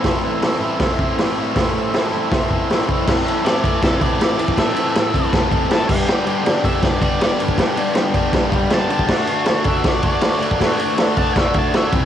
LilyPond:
<<
  \new Staff \with { instrumentName = "Lead electric guitar" } { \time 4/4 \key a \minor \tempo 4 = 159 r1 | r1 | \key a \dorian r4 d''8 d''8 a'8 d''4. | e''2 r4 a''8 g''8~ |
g''4. e''8 d''8 d''4 r8 | r2. a''8 a''8~ | a''4. e''8 d''8 d''4 r8 | r4. a''8 e''8 a''8 e''4 | }
  \new Staff \with { instrumentName = "Transistor combo organ" } { \time 4/4 \key a \minor <a' c'' e''>8 <a' c'' e''>8 <a' c'' e''>8 <a' c'' e''>8 <a' c'' e''>8 <a' c'' e''>8 <a' c'' d''>8 <a' c'' e''>8 | <a' c'' e''>8 <a' c'' e''>8 <a' c'' e''>8 <a' c'' e''>8 <a' c'' e''>8 <a' c'' e''>8 <a' c'' d''>8 <a' c'' e''>8 | \key a \dorian r1 | r1 |
r1 | r1 | <a' d'' fis''>8 <a' d'' fis''>8 <a' d'' fis''>8 <a' d'' fis''>8 <a' d'' fis''>8 <a' d'' fis''>8 <a' d'' fis''>8 <a' d'' fis''>8 | <a' d'' fis''>8 <a' d'' fis''>8 <a' d'' e''>8 <a' d'' fis''>8 <a' d'' fis''>8 <a' d'' fis''>8 <a' d'' e''>8 <g' c'' e''>8 | }
  \new Staff \with { instrumentName = "Overdriven electric guitar" } { \time 4/4 \key a \minor <a, e a c' e'>8 <a c' e'>8 <e a c' e'>8 <a c' e'>8 <a, e a c' e'>4 <e a c' e'>8 <a c' e'>8 | <a, e a c' e'>8 <a c' e'>8 <e a c' e'>8 <a c' e'>8 <a, e a c' e'>4 <e a c' e'>8 <a c' e'>8 | \key a \dorian <a, e c' e' a'>8 <a, e c' e' a'>8 <a, e c' e' a'>8 <a, e c' e' a'>8 <a, e c' e' a'>8 <a, e c' e' a'>8 <a, e c' e' a'>8 <a, e c' e' a'>8 | <a, e c' e' a'>8 <a, e c' e' a'>8 <a, e c' e' a'>8 <a, e c' e' a'>8 <a, e c' e' a'>8 <a, e c' e' a'>8 <a, e c' e' a'>8 <g, d g b d' g'>8 |
<g, d g b d' g'>8 <g, d g b d' g'>8 <g, d g b d' g'>8 <g, d g b d' g'>8 <g, d g b d' g'>8 <g, d g b d' g'>8 <g, d g b d' g'>8 <g, d g b d' g'>8 | <g, d g b d' g'>8 <g, d g b d' g'>8 <g, d g b d' g'>8 <g, d g b d' g'>8 <g, d g b d' g'>8 <g, d g b d' g'>8 <g, d g b d' g'>8 <g, d g b d' g'>8 | <d a d' fis'>8 <d a d' fis'>8 <d a d' fis'>8 <d a d' fis'>8 <d a d' fis'>8 <d a d' fis'>8 <d a d' fis'>8 <d a d' fis'>8 | <d a d' fis'>8 <d a d' fis'>8 <d a d' fis'>8 <d a d' fis'>8 <d a d' fis'>8 <d a d' fis'>8 <d a d' fis'>8 <c e g c' e'>8 | }
  \new DrumStaff \with { instrumentName = "Drums" } \drummode { \time 4/4 <hho bd sn>4 <hho sn>4 <hho bd sn>8 bd8 <hho sn>4 | <hho bd sn>4 <hho sn>4 <hho bd sn>8 bd8 <hho sn>8 bd8 | <cymc bd sn>8 cymr8 <cymr sn>8 <bd cymr>8 <bd cymr sn>8 <bd cymr>8 <cymr sn>8 cymr16 bd16 | <bd cymr sn>8 cymr8 <cymr sn>8 <bd cymr>8 <bd cymr sn>8 <bd cymr>8 <cymr sn>8 <cymc bd>8 |
sn8 cymr8 <cymr sn>8 <bd cymr>8 <bd cymr sn>8 <bd cymr>8 <cymr sn>8 cymr16 bd16 | <bd cymr sn>8 cymr8 <cymr sn>8 <bd cymr>8 <bd cymr sn>8 <bd cymr>8 <cymr sn>8 cymr16 bd16 | <cymc bd sn>8 cymr8 <cymr sn>8 <bd cymr>8 <bd cymr sn>8 <bd cymr>8 <cymr sn>8 cymr16 bd16 | <bd cymr sn>8 cymr8 <cymr sn>8 <bd cymr>8 <bd cymr sn>8 <bd cymr>8 <cymr sn>8 <bd cymr>8 | }
>>